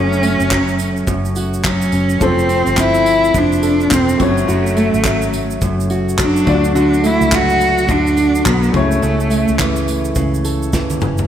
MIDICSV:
0, 0, Header, 1, 6, 480
1, 0, Start_track
1, 0, Tempo, 567644
1, 1870, Time_signature, 4, 2, 24, 8
1, 9530, End_track
2, 0, Start_track
2, 0, Title_t, "Upright piano"
2, 0, Program_c, 0, 0
2, 0, Control_c, 0, 64, 127
2, 0, Note_on_c, 0, 57, 73
2, 0, Note_on_c, 0, 61, 61
2, 0, Note_on_c, 0, 66, 63
2, 0, Note_on_c, 0, 73, 75
2, 1588, Note_off_c, 0, 57, 0
2, 1593, Note_off_c, 0, 61, 0
2, 1599, Note_off_c, 0, 66, 0
2, 1605, Note_off_c, 0, 73, 0
2, 1852, Note_on_c, 0, 57, 64
2, 1864, Note_on_c, 0, 60, 55
2, 1874, Note_on_c, 0, 53, 58
2, 1883, Control_c, 0, 64, 0
2, 1885, Note_on_c, 0, 72, 69
2, 2019, Control_c, 0, 64, 127
2, 3507, Note_off_c, 0, 57, 0
2, 3513, Note_off_c, 0, 60, 0
2, 3519, Note_off_c, 0, 53, 0
2, 3524, Note_off_c, 0, 72, 0
2, 3531, Note_on_c, 0, 57, 70
2, 3544, Note_on_c, 0, 61, 62
2, 3553, Note_on_c, 0, 66, 60
2, 3562, Control_c, 0, 64, 0
2, 3564, Note_on_c, 0, 73, 82
2, 3705, Control_c, 0, 64, 127
2, 5427, Note_off_c, 0, 57, 0
2, 5433, Note_off_c, 0, 61, 0
2, 5437, Note_off_c, 0, 66, 0
2, 5443, Note_off_c, 0, 73, 0
2, 5456, Note_on_c, 0, 57, 72
2, 5466, Note_on_c, 0, 62, 66
2, 5478, Note_on_c, 0, 65, 51
2, 5483, Control_c, 0, 64, 0
2, 5490, Note_on_c, 0, 74, 86
2, 5535, Note_on_c, 0, 66, 67
2, 5540, Note_off_c, 0, 65, 0
2, 5640, Control_c, 0, 64, 127
2, 7349, Note_off_c, 0, 57, 0
2, 7354, Note_off_c, 0, 62, 0
2, 7366, Note_off_c, 0, 74, 0
2, 7374, Note_on_c, 0, 57, 68
2, 7385, Note_on_c, 0, 61, 63
2, 7388, Note_off_c, 0, 66, 0
2, 7396, Note_on_c, 0, 64, 59
2, 7401, Control_c, 0, 64, 0
2, 7408, Note_on_c, 0, 73, 84
2, 7535, Control_c, 0, 64, 127
2, 9269, Note_off_c, 0, 57, 0
2, 9275, Note_off_c, 0, 61, 0
2, 9280, Note_off_c, 0, 64, 0
2, 9286, Note_off_c, 0, 73, 0
2, 9530, End_track
3, 0, Start_track
3, 0, Title_t, "Cello"
3, 0, Program_c, 1, 42
3, 0, Note_on_c, 1, 61, 98
3, 1155, Note_off_c, 1, 61, 0
3, 1401, Note_on_c, 1, 61, 88
3, 1885, Note_on_c, 1, 60, 102
3, 1897, Note_off_c, 1, 61, 0
3, 2363, Note_on_c, 1, 64, 112
3, 2376, Note_off_c, 1, 60, 0
3, 2853, Note_on_c, 1, 62, 101
3, 2866, Note_off_c, 1, 64, 0
3, 3330, Note_on_c, 1, 60, 87
3, 3343, Note_off_c, 1, 62, 0
3, 3576, Note_on_c, 1, 57, 93
3, 3589, Note_off_c, 1, 60, 0
3, 5003, Note_off_c, 1, 57, 0
3, 5252, Note_on_c, 1, 62, 99
3, 5688, Note_off_c, 1, 62, 0
3, 5733, Note_on_c, 1, 62, 98
3, 5974, Note_on_c, 1, 64, 99
3, 5987, Note_off_c, 1, 62, 0
3, 6213, Note_on_c, 1, 66, 107
3, 6226, Note_off_c, 1, 64, 0
3, 6688, Note_on_c, 1, 62, 106
3, 6701, Note_off_c, 1, 66, 0
3, 7160, Note_on_c, 1, 59, 91
3, 7172, Note_off_c, 1, 62, 0
3, 7395, Note_off_c, 1, 59, 0
3, 7409, Note_on_c, 1, 57, 90
3, 8806, Note_off_c, 1, 57, 0
3, 9530, End_track
4, 0, Start_track
4, 0, Title_t, "Steel-string acoustic guitar"
4, 0, Program_c, 2, 25
4, 0, Note_on_c, 2, 42, 80
4, 0, Note_on_c, 2, 54, 70
4, 0, Note_on_c, 2, 57, 66
4, 0, Note_on_c, 2, 66, 71
4, 190, Note_off_c, 2, 57, 0
4, 193, Note_on_c, 2, 57, 58
4, 431, Note_off_c, 2, 54, 0
4, 434, Note_on_c, 2, 54, 69
4, 902, Note_off_c, 2, 42, 0
4, 913, Note_on_c, 2, 42, 79
4, 1144, Note_off_c, 2, 66, 0
4, 1154, Note_on_c, 2, 66, 63
4, 1381, Note_off_c, 2, 54, 0
4, 1391, Note_on_c, 2, 54, 67
4, 1633, Note_on_c, 2, 61, 62
4, 1866, Note_off_c, 2, 54, 0
4, 1870, Note_on_c, 2, 53, 84
4, 1871, Note_off_c, 2, 66, 0
4, 1874, Note_on_c, 2, 69, 70
4, 1929, Note_off_c, 2, 42, 0
4, 1930, Note_off_c, 2, 61, 0
4, 2102, Note_off_c, 2, 57, 0
4, 2105, Note_on_c, 2, 60, 60
4, 2336, Note_off_c, 2, 60, 0
4, 2346, Note_on_c, 2, 60, 72
4, 2818, Note_off_c, 2, 53, 0
4, 2828, Note_on_c, 2, 53, 72
4, 3065, Note_off_c, 2, 69, 0
4, 3068, Note_on_c, 2, 69, 64
4, 3293, Note_off_c, 2, 60, 0
4, 3304, Note_on_c, 2, 60, 74
4, 3547, Note_on_c, 2, 42, 79
4, 3605, Note_off_c, 2, 60, 0
4, 3607, Note_off_c, 2, 53, 0
4, 3776, Note_off_c, 2, 42, 0
4, 3786, Note_on_c, 2, 42, 85
4, 3787, Note_off_c, 2, 69, 0
4, 3791, Note_on_c, 2, 66, 71
4, 4030, Note_on_c, 2, 57, 66
4, 4272, Note_on_c, 2, 54, 75
4, 4742, Note_off_c, 2, 42, 0
4, 4752, Note_on_c, 2, 42, 82
4, 4989, Note_off_c, 2, 66, 0
4, 4992, Note_on_c, 2, 66, 62
4, 5228, Note_off_c, 2, 54, 0
4, 5231, Note_on_c, 2, 54, 72
4, 5471, Note_on_c, 2, 50, 78
4, 5529, Note_off_c, 2, 42, 0
4, 5700, Note_off_c, 2, 50, 0
4, 5709, Note_on_c, 2, 50, 95
4, 5712, Note_off_c, 2, 66, 0
4, 5716, Note_on_c, 2, 66, 77
4, 5946, Note_off_c, 2, 57, 0
4, 5949, Note_on_c, 2, 57, 69
4, 6182, Note_off_c, 2, 54, 0
4, 6186, Note_on_c, 2, 54, 74
4, 6659, Note_off_c, 2, 50, 0
4, 6669, Note_on_c, 2, 50, 83
4, 6904, Note_off_c, 2, 66, 0
4, 6914, Note_on_c, 2, 66, 57
4, 7138, Note_off_c, 2, 54, 0
4, 7148, Note_on_c, 2, 54, 66
4, 7386, Note_off_c, 2, 50, 0
4, 7390, Note_on_c, 2, 49, 82
4, 7447, Note_off_c, 2, 54, 0
4, 7450, Note_off_c, 2, 66, 0
4, 7619, Note_off_c, 2, 49, 0
4, 7629, Note_on_c, 2, 49, 86
4, 7635, Note_on_c, 2, 69, 71
4, 7865, Note_off_c, 2, 57, 0
4, 7868, Note_on_c, 2, 57, 60
4, 8112, Note_on_c, 2, 52, 64
4, 8582, Note_off_c, 2, 49, 0
4, 8592, Note_on_c, 2, 49, 72
4, 8831, Note_off_c, 2, 69, 0
4, 8834, Note_on_c, 2, 69, 62
4, 9062, Note_off_c, 2, 52, 0
4, 9072, Note_on_c, 2, 52, 65
4, 9317, Note_on_c, 2, 61, 54
4, 9530, Note_off_c, 2, 49, 0
4, 9530, Note_off_c, 2, 52, 0
4, 9530, Note_off_c, 2, 57, 0
4, 9530, Note_off_c, 2, 61, 0
4, 9530, Note_off_c, 2, 69, 0
4, 9530, End_track
5, 0, Start_track
5, 0, Title_t, "Fingered electric bass"
5, 0, Program_c, 3, 33
5, 0, Note_on_c, 3, 30, 89
5, 306, Note_off_c, 3, 30, 0
5, 338, Note_on_c, 3, 30, 73
5, 884, Note_off_c, 3, 30, 0
5, 909, Note_on_c, 3, 30, 98
5, 1596, Note_off_c, 3, 30, 0
5, 1629, Note_on_c, 3, 30, 88
5, 1851, Note_off_c, 3, 30, 0
5, 1870, Note_on_c, 3, 29, 86
5, 2224, Note_off_c, 3, 29, 0
5, 2255, Note_on_c, 3, 31, 84
5, 2802, Note_off_c, 3, 31, 0
5, 2828, Note_on_c, 3, 29, 89
5, 3275, Note_off_c, 3, 29, 0
5, 3311, Note_on_c, 3, 28, 85
5, 3532, Note_off_c, 3, 28, 0
5, 3553, Note_on_c, 3, 30, 88
5, 3773, Note_off_c, 3, 30, 0
5, 3793, Note_on_c, 3, 30, 84
5, 4145, Note_off_c, 3, 30, 0
5, 4177, Note_on_c, 3, 32, 87
5, 4723, Note_off_c, 3, 32, 0
5, 4751, Note_on_c, 3, 30, 108
5, 5436, Note_off_c, 3, 30, 0
5, 5473, Note_on_c, 3, 38, 106
5, 6061, Note_off_c, 3, 38, 0
5, 6096, Note_on_c, 3, 37, 90
5, 6642, Note_off_c, 3, 37, 0
5, 6672, Note_on_c, 3, 38, 108
5, 7117, Note_off_c, 3, 38, 0
5, 7154, Note_on_c, 3, 35, 86
5, 7373, Note_off_c, 3, 35, 0
5, 7390, Note_on_c, 3, 37, 100
5, 7611, Note_off_c, 3, 37, 0
5, 7635, Note_on_c, 3, 37, 88
5, 7986, Note_off_c, 3, 37, 0
5, 8022, Note_on_c, 3, 37, 80
5, 8566, Note_off_c, 3, 37, 0
5, 8592, Note_on_c, 3, 37, 99
5, 9278, Note_off_c, 3, 37, 0
5, 9315, Note_on_c, 3, 30, 80
5, 9530, Note_off_c, 3, 30, 0
5, 9530, End_track
6, 0, Start_track
6, 0, Title_t, "Drums"
6, 108, Note_on_c, 9, 82, 50
6, 193, Note_off_c, 9, 82, 0
6, 194, Note_on_c, 9, 54, 65
6, 200, Note_on_c, 9, 82, 43
6, 278, Note_off_c, 9, 54, 0
6, 284, Note_off_c, 9, 82, 0
6, 339, Note_on_c, 9, 82, 54
6, 423, Note_off_c, 9, 82, 0
6, 432, Note_on_c, 9, 36, 95
6, 433, Note_on_c, 9, 39, 113
6, 434, Note_on_c, 9, 82, 61
6, 517, Note_off_c, 9, 36, 0
6, 517, Note_off_c, 9, 39, 0
6, 518, Note_off_c, 9, 82, 0
6, 577, Note_on_c, 9, 82, 49
6, 662, Note_off_c, 9, 82, 0
6, 668, Note_on_c, 9, 82, 49
6, 672, Note_on_c, 9, 54, 67
6, 752, Note_off_c, 9, 82, 0
6, 756, Note_off_c, 9, 54, 0
6, 818, Note_on_c, 9, 82, 52
6, 902, Note_off_c, 9, 82, 0
6, 908, Note_on_c, 9, 36, 102
6, 908, Note_on_c, 9, 82, 69
6, 992, Note_off_c, 9, 82, 0
6, 993, Note_off_c, 9, 36, 0
6, 1058, Note_on_c, 9, 82, 46
6, 1142, Note_off_c, 9, 82, 0
6, 1146, Note_on_c, 9, 82, 46
6, 1149, Note_on_c, 9, 54, 66
6, 1230, Note_off_c, 9, 82, 0
6, 1234, Note_off_c, 9, 54, 0
6, 1299, Note_on_c, 9, 82, 55
6, 1381, Note_off_c, 9, 82, 0
6, 1381, Note_on_c, 9, 82, 62
6, 1391, Note_on_c, 9, 36, 97
6, 1391, Note_on_c, 9, 39, 114
6, 1466, Note_off_c, 9, 82, 0
6, 1475, Note_off_c, 9, 36, 0
6, 1475, Note_off_c, 9, 39, 0
6, 1536, Note_on_c, 9, 82, 58
6, 1620, Note_off_c, 9, 82, 0
6, 1624, Note_on_c, 9, 54, 57
6, 1625, Note_on_c, 9, 82, 39
6, 1709, Note_off_c, 9, 54, 0
6, 1710, Note_off_c, 9, 82, 0
6, 1771, Note_on_c, 9, 82, 57
6, 1855, Note_off_c, 9, 82, 0
6, 1869, Note_on_c, 9, 36, 112
6, 1869, Note_on_c, 9, 82, 67
6, 1953, Note_off_c, 9, 82, 0
6, 1954, Note_off_c, 9, 36, 0
6, 2019, Note_on_c, 9, 82, 47
6, 2104, Note_off_c, 9, 82, 0
6, 2107, Note_on_c, 9, 54, 63
6, 2113, Note_on_c, 9, 82, 46
6, 2191, Note_off_c, 9, 54, 0
6, 2197, Note_off_c, 9, 82, 0
6, 2252, Note_on_c, 9, 82, 51
6, 2337, Note_off_c, 9, 82, 0
6, 2344, Note_on_c, 9, 39, 102
6, 2349, Note_on_c, 9, 36, 88
6, 2354, Note_on_c, 9, 82, 58
6, 2428, Note_off_c, 9, 39, 0
6, 2434, Note_off_c, 9, 36, 0
6, 2438, Note_off_c, 9, 82, 0
6, 2489, Note_on_c, 9, 82, 47
6, 2574, Note_off_c, 9, 82, 0
6, 2588, Note_on_c, 9, 54, 66
6, 2594, Note_on_c, 9, 82, 43
6, 2672, Note_off_c, 9, 54, 0
6, 2679, Note_off_c, 9, 82, 0
6, 2742, Note_on_c, 9, 82, 51
6, 2827, Note_off_c, 9, 82, 0
6, 2828, Note_on_c, 9, 36, 105
6, 2829, Note_on_c, 9, 82, 70
6, 2912, Note_off_c, 9, 36, 0
6, 2913, Note_off_c, 9, 82, 0
6, 2980, Note_on_c, 9, 82, 47
6, 3064, Note_off_c, 9, 82, 0
6, 3067, Note_on_c, 9, 54, 68
6, 3069, Note_on_c, 9, 82, 49
6, 3152, Note_off_c, 9, 54, 0
6, 3153, Note_off_c, 9, 82, 0
6, 3218, Note_on_c, 9, 82, 57
6, 3302, Note_off_c, 9, 82, 0
6, 3305, Note_on_c, 9, 39, 108
6, 3310, Note_on_c, 9, 82, 70
6, 3311, Note_on_c, 9, 36, 101
6, 3390, Note_off_c, 9, 39, 0
6, 3395, Note_off_c, 9, 82, 0
6, 3396, Note_off_c, 9, 36, 0
6, 3458, Note_on_c, 9, 82, 62
6, 3542, Note_off_c, 9, 82, 0
6, 3548, Note_on_c, 9, 54, 60
6, 3550, Note_on_c, 9, 49, 65
6, 3551, Note_on_c, 9, 36, 98
6, 3632, Note_off_c, 9, 54, 0
6, 3635, Note_off_c, 9, 36, 0
6, 3635, Note_off_c, 9, 49, 0
6, 3699, Note_on_c, 9, 82, 58
6, 3784, Note_off_c, 9, 82, 0
6, 3795, Note_on_c, 9, 82, 64
6, 3879, Note_off_c, 9, 82, 0
6, 3945, Note_on_c, 9, 82, 54
6, 4029, Note_off_c, 9, 82, 0
6, 4031, Note_on_c, 9, 54, 62
6, 4037, Note_on_c, 9, 82, 45
6, 4115, Note_off_c, 9, 54, 0
6, 4122, Note_off_c, 9, 82, 0
6, 4178, Note_on_c, 9, 82, 52
6, 4262, Note_off_c, 9, 82, 0
6, 4266, Note_on_c, 9, 39, 101
6, 4270, Note_on_c, 9, 82, 62
6, 4271, Note_on_c, 9, 36, 102
6, 4351, Note_off_c, 9, 39, 0
6, 4355, Note_off_c, 9, 82, 0
6, 4356, Note_off_c, 9, 36, 0
6, 4412, Note_on_c, 9, 82, 55
6, 4497, Note_off_c, 9, 82, 0
6, 4510, Note_on_c, 9, 82, 43
6, 4511, Note_on_c, 9, 54, 67
6, 4595, Note_off_c, 9, 82, 0
6, 4596, Note_off_c, 9, 54, 0
6, 4655, Note_on_c, 9, 82, 50
6, 4740, Note_off_c, 9, 82, 0
6, 4747, Note_on_c, 9, 82, 71
6, 4750, Note_on_c, 9, 36, 93
6, 4832, Note_off_c, 9, 82, 0
6, 4834, Note_off_c, 9, 36, 0
6, 4907, Note_on_c, 9, 82, 47
6, 4989, Note_on_c, 9, 54, 72
6, 4991, Note_off_c, 9, 82, 0
6, 5000, Note_on_c, 9, 82, 50
6, 5073, Note_off_c, 9, 54, 0
6, 5084, Note_off_c, 9, 82, 0
6, 5148, Note_on_c, 9, 82, 64
6, 5229, Note_on_c, 9, 39, 104
6, 5232, Note_off_c, 9, 82, 0
6, 5232, Note_on_c, 9, 82, 68
6, 5233, Note_on_c, 9, 36, 104
6, 5314, Note_off_c, 9, 39, 0
6, 5317, Note_off_c, 9, 82, 0
6, 5318, Note_off_c, 9, 36, 0
6, 5382, Note_on_c, 9, 82, 56
6, 5467, Note_off_c, 9, 82, 0
6, 5469, Note_on_c, 9, 54, 60
6, 5472, Note_on_c, 9, 36, 98
6, 5554, Note_off_c, 9, 54, 0
6, 5557, Note_off_c, 9, 36, 0
6, 5618, Note_on_c, 9, 82, 51
6, 5703, Note_off_c, 9, 82, 0
6, 5715, Note_on_c, 9, 82, 63
6, 5800, Note_off_c, 9, 82, 0
6, 5867, Note_on_c, 9, 82, 48
6, 5951, Note_off_c, 9, 82, 0
6, 5952, Note_on_c, 9, 54, 62
6, 5956, Note_on_c, 9, 82, 45
6, 6037, Note_off_c, 9, 54, 0
6, 6040, Note_off_c, 9, 82, 0
6, 6100, Note_on_c, 9, 82, 55
6, 6184, Note_off_c, 9, 82, 0
6, 6190, Note_on_c, 9, 39, 109
6, 6192, Note_on_c, 9, 82, 61
6, 6193, Note_on_c, 9, 36, 99
6, 6275, Note_off_c, 9, 39, 0
6, 6277, Note_off_c, 9, 36, 0
6, 6277, Note_off_c, 9, 82, 0
6, 6336, Note_on_c, 9, 82, 53
6, 6421, Note_off_c, 9, 82, 0
6, 6432, Note_on_c, 9, 82, 44
6, 6434, Note_on_c, 9, 54, 67
6, 6516, Note_off_c, 9, 82, 0
6, 6518, Note_off_c, 9, 54, 0
6, 6579, Note_on_c, 9, 82, 49
6, 6664, Note_off_c, 9, 82, 0
6, 6667, Note_on_c, 9, 82, 70
6, 6670, Note_on_c, 9, 36, 106
6, 6752, Note_off_c, 9, 82, 0
6, 6754, Note_off_c, 9, 36, 0
6, 6822, Note_on_c, 9, 82, 45
6, 6907, Note_off_c, 9, 82, 0
6, 6908, Note_on_c, 9, 82, 47
6, 6911, Note_on_c, 9, 54, 70
6, 6993, Note_off_c, 9, 82, 0
6, 6996, Note_off_c, 9, 54, 0
6, 7061, Note_on_c, 9, 82, 62
6, 7146, Note_off_c, 9, 82, 0
6, 7147, Note_on_c, 9, 82, 74
6, 7152, Note_on_c, 9, 39, 110
6, 7153, Note_on_c, 9, 36, 99
6, 7231, Note_off_c, 9, 82, 0
6, 7237, Note_off_c, 9, 39, 0
6, 7238, Note_off_c, 9, 36, 0
6, 7299, Note_on_c, 9, 82, 59
6, 7383, Note_off_c, 9, 82, 0
6, 7389, Note_on_c, 9, 54, 58
6, 7391, Note_on_c, 9, 36, 95
6, 7473, Note_off_c, 9, 54, 0
6, 7476, Note_off_c, 9, 36, 0
6, 7537, Note_on_c, 9, 82, 55
6, 7622, Note_off_c, 9, 82, 0
6, 7634, Note_on_c, 9, 82, 62
6, 7718, Note_off_c, 9, 82, 0
6, 7780, Note_on_c, 9, 82, 45
6, 7864, Note_off_c, 9, 82, 0
6, 7868, Note_on_c, 9, 82, 43
6, 7872, Note_on_c, 9, 54, 59
6, 7953, Note_off_c, 9, 82, 0
6, 7957, Note_off_c, 9, 54, 0
6, 8017, Note_on_c, 9, 82, 52
6, 8101, Note_off_c, 9, 82, 0
6, 8111, Note_on_c, 9, 39, 102
6, 8113, Note_on_c, 9, 36, 96
6, 8115, Note_on_c, 9, 82, 65
6, 8196, Note_off_c, 9, 39, 0
6, 8198, Note_off_c, 9, 36, 0
6, 8200, Note_off_c, 9, 82, 0
6, 8253, Note_on_c, 9, 82, 52
6, 8338, Note_off_c, 9, 82, 0
6, 8354, Note_on_c, 9, 82, 46
6, 8355, Note_on_c, 9, 54, 67
6, 8438, Note_off_c, 9, 82, 0
6, 8439, Note_off_c, 9, 54, 0
6, 8495, Note_on_c, 9, 82, 52
6, 8580, Note_off_c, 9, 82, 0
6, 8584, Note_on_c, 9, 82, 74
6, 8590, Note_on_c, 9, 36, 99
6, 8668, Note_off_c, 9, 82, 0
6, 8675, Note_off_c, 9, 36, 0
6, 8746, Note_on_c, 9, 82, 46
6, 8830, Note_off_c, 9, 82, 0
6, 8833, Note_on_c, 9, 54, 74
6, 8835, Note_on_c, 9, 82, 48
6, 8917, Note_off_c, 9, 54, 0
6, 8919, Note_off_c, 9, 82, 0
6, 8984, Note_on_c, 9, 82, 57
6, 9069, Note_off_c, 9, 82, 0
6, 9072, Note_on_c, 9, 82, 72
6, 9076, Note_on_c, 9, 36, 102
6, 9076, Note_on_c, 9, 38, 58
6, 9157, Note_off_c, 9, 82, 0
6, 9161, Note_off_c, 9, 36, 0
6, 9161, Note_off_c, 9, 38, 0
6, 9217, Note_on_c, 9, 82, 56
6, 9219, Note_on_c, 9, 48, 67
6, 9302, Note_off_c, 9, 82, 0
6, 9303, Note_off_c, 9, 48, 0
6, 9309, Note_on_c, 9, 82, 37
6, 9316, Note_on_c, 9, 45, 94
6, 9393, Note_off_c, 9, 82, 0
6, 9400, Note_off_c, 9, 45, 0
6, 9452, Note_on_c, 9, 82, 52
6, 9462, Note_on_c, 9, 43, 92
6, 9530, Note_off_c, 9, 43, 0
6, 9530, Note_off_c, 9, 82, 0
6, 9530, End_track
0, 0, End_of_file